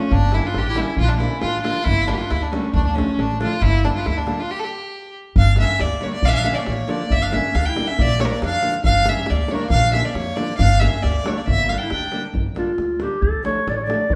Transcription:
Already playing: clarinet A3, violin C#4
0.11 upright bass G1, clarinet A#3, violin D4, davul low
0.32 nylon-string guitar D3 G3 A#3 D4, clarinet C#4, violin E4, davul high
0.46 clarinet D4, violin F4
0.54 upright bass A1, violin G4, davul high
0.59 clarinet D4
0.68 clarinet E4, violin G4
0.74 nylon-string guitar D3 G3 A#3 D4, davul high
0.78 clarinet C#4, violin E4
0.97 upright bass A#1, violin F4, davul low
1.03 clarinet D4
1.09 violin D4
1.15 clarinet A#3, violin E4
1.19 nylon-string guitar D3 F3 A#3 D4, davul high
1.28 clarinet C#4
1.42 upright bass A1, violin F4, davul high
1.47 clarinet D4
1.62 nylon-string guitar D3 F3 A#3 D4, violin F4, davul high
1.69 clarinet D4
1.84 upright bass G1, violin E4, davul low
1.89 clarinet A#3
2.07 nylon-string guitar D3 G3 A#3 D4, clarinet A#3, violin D4, davul high
2.14 violin F4 G4
2.19 clarinet D4 E4
2.30 upright bass D2, clarinet A#3, violin E4, davul high
2.43 clarinet A#3, violin D4
2.52 nylon-string guitar D3 G3 A#3 D4, clarinet A3, violin C#4, davul high
2.73 upright bass D2, clarinet A3, violin D4, davul low
2.86 clarinet A#3, violin D4
2.94 nylon-string guitar D3 F3 A3 D4, clarinet A3, violin C#4
2.98 davul high
3.18 upright bass A1, clarinet A3, violin D4, davul high
3.39 nylon-string guitar D3 F3 A3 D4, clarinet D4, violin F4, davul high
3.61 upright bass G1, clarinet A#3, violin E4, davul low
3.83 nylon-string guitar D3 G3 A#3 D4, clarinet A#3, violin D4, davul high
3.95 clarinet D4, violin F4
4.06 upright bass D2, clarinet A#3, violin E4, davul high
4.17 clarinet A#3, violin D4
4.26 nylon-string guitar D3 G3 A#3 D4, davul high
4.40 clarinet D4, violin F4
4.51 violin G4
4.59 violin A4
4.65 violin G4
5.36 upright bass G1, clarinet D4, violin F5, davul low
5.46 davul high
5.56 nylon-string guitar D3 G3 A#3 D4, davul high
5.60 clarinet C#4, violin E5
5.79 upright bass D2, clarinet A#3, violin D5, davul high
6.01 nylon-string guitar D3 G3 A#3 D4, violin C#5, davul high
6.06 clarinet A3
6.13 clarinet A#3, violin D5
6.22 upright bass A#1, violin F5, davul low
6.28 clarinet D4, violin E5
6.32 clarinet C#4, violin F5, davul high
6.37 clarinet D4
6.44 nylon-string guitar D3 F3 A#3 D4, violin E5, davul high
6.48 clarinet C#4
6.54 violin C#5 D5
6.60 clarinet A#3, violin D5
6.66 upright bass A1, clarinet A#3, violin C#5, davul high
6.87 nylon-string guitar D3 F3 A#3 D4, clarinet A#3, violin D5, davul high
7.10 upright bass G1, clarinet A#3, violin E5, davul low
7.22 clarinet D4, violin F5, davul high
7.30 nylon-string guitar D3 G3 A#3 D4, violin E5, davul high
7.35 clarinet C#4
7.55 upright bass D2, clarinet D4, violin F5, davul high
7.66 clarinet E4, violin G5
7.75 nylon-string guitar D3 G3 A#3 D4, davul high
7.88 clarinet C#4, violin E5
7.97 upright bass A#1, clarinet A#3, davul low
8.02 violin D5
8.18 nylon-string guitar D3 F3 A#3 D4, clarinet A3, violin C#5, davul high
8.24 clarinet G3 A3, violin A#4 C#5
8.31 clarinet A#3, violin D5, davul high
8.42 upright bass F2, clarinet D4, violin F5, davul high
8.53 davul high
8.61 nylon-string guitar D3 F3 A#3 D4, davul high
8.73 davul high
8.84 upright bass G1, clarinet D4, violin F5, davul low
8.95 davul high
9.06 nylon-string guitar D3 G3 A#3 D4, violin E5, davul high
9.10 clarinet C#4
9.26 violin D5, davul high
9.30 upright bass D2, clarinet A#3
9.48 nylon-string guitar D3 G3 A#3 D4, violin C#5, davul high
9.53 clarinet A3, violin A#4 C#5
9.61 clarinet A#3, violin D5
9.70 upright bass A#1, clarinet D4, violin F5, davul low
9.83 davul high
9.93 nylon-string guitar D3 F3 A#3 D4, clarinet C#4, violin E5, davul high
10.05 clarinet A#3, violin D5
10.14 upright bass F2, clarinet A#3, violin C#5, davul high
10.36 nylon-string guitar D3 F3 A#3 D4, clarinet A#3, violin D5, davul high
10.58 upright bass G1, clarinet D4, violin F5, davul low
10.71 davul high
10.80 nylon-string guitar D3 G3 A#3 D4, clarinet C#4, violin E5, davul high
11.02 upright bass D2, clarinet A#3, violin D5, davul high
11.23 nylon-string guitar D3 G3 A#3 D4, davul high
11.27 clarinet A3, violin C#5
11.37 clarinet A#3, violin D5
11.46 upright bass G1, clarinet A#3, violin E5, davul low
11.69 nylon-string guitar D3 G3 A#3 D4, clarinet D4, violin F5
11.78 violin G5, davul high
11.83 clarinet E4
11.89 upright bass D2, violin G5, davul high
11.93 clarinet D4
12.01 davul high
12.12 nylon-string guitar D3 G3 A#3 D4, davul high
12.24 davul high
12.34 upright bass G1, davul low
12.46 davul high
12.55 nylon-string guitar D3 G3 A#3 D4, clarinet F4, davul high
12.78 upright bass D2, davul high
13.00 nylon-string guitar D3 G3 A#3 D4, clarinet G4, davul high
13.22 upright bass D2, clarinet A4, davul low
13.33 davul high
13.43 nylon-string guitar D3 F3 A3 D4, clarinet C#5, davul high
13.67 upright bass A1, clarinet D5, davul high
13.76 clarinet C#5
13.83 nylon-string guitar D3 F3, clarinet D5
13.87 nylon-string guitar A3 D4, davul high
14.10 upright bass G1, davul low

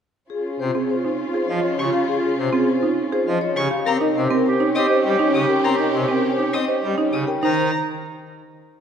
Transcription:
0.30 string section C#4 F4, clarinet F4, vibraphone G#4
0.59 pipe organ C3, clarinet F4, vibraphone C5
0.75 marimba C4, vibraphone G#4
0.89 clarinet F4, vibraphone C5
1.05 marimba D#4
1.23 clarinet F4
1.34 marimba G#4, vibraphone C5
1.48 pipe organ F3, vibraphone D#5
1.54 clarinet F4
1.64 vibraphone C#5
1.78 pipe organ C#3, vibraphone G4, violin C#6
1.84 clarinet F4
1.93 marimba G4, vibraphone F5
2.08 vibraphone G#4
2.16 clarinet F4
2.38 pipe organ C3, vibraphone C5
2.46 clarinet F4
2.53 marimba C4, vibraphone G#4
2.68 vibraphone C5
2.78 clarinet F4
2.83 marimba D#4
3.09 clarinet F4, marimba G#4, vibraphone C5
3.27 pipe organ F3, vibraphone D#5
3.40 clarinet F4, vibraphone C#5
3.56 pipe organ C#3, vibraphone G4, violin C#6
3.71 marimba G4, vibraphone F5
3.85 pipe organ C4, string section C#4 G4, clarinet G4, vibraphone A#4, violin A#5
4.01 marimba D#4, vibraphone D#5
4.15 pipe organ C3, clarinet G4, vibraphone C5
4.30 marimba C4, vibraphone A#4
4.46 clarinet G4, vibraphone C5
4.60 marimba D#4, vibraphone C#5
4.75 pipe organ C4, clarinet G4, vibraphone D#5, violin D#6
4.90 marimba C5, vibraphone C5
5.04 pipe organ G3, vibraphone D#5
5.09 clarinet G4
5.19 marimba D#4, vibraphone C#5
5.34 pipe organ C#3, vibraphone G4, violin D#6
5.40 clarinet G4
5.49 marimba A#4, vibraphone G5
5.64 pipe organ C4, vibraphone A#4, violin A#5
5.72 clarinet G4
5.79 marimba D#4, vibraphone D#5
5.94 pipe organ C3, vibraphone C5
6.03 clarinet G4
6.08 marimba C4, vibraphone A#4
6.24 vibraphone C5
6.34 clarinet G4
6.38 marimba D#4, vibraphone C#5
6.53 pipe organ C4, vibraphone D#5, violin D#6
6.65 clarinet G4, marimba C5, vibraphone C5
6.84 pipe organ G3, vibraphone D#5
6.96 marimba D#4, clarinet G4, vibraphone C#5
7.13 pipe organ C#3, vibraphone G4, violin D#6
7.27 marimba A#4, vibraphone G5
7.43 pipe organ D#3, marimba D#4, vibraphone C5, violin A#5

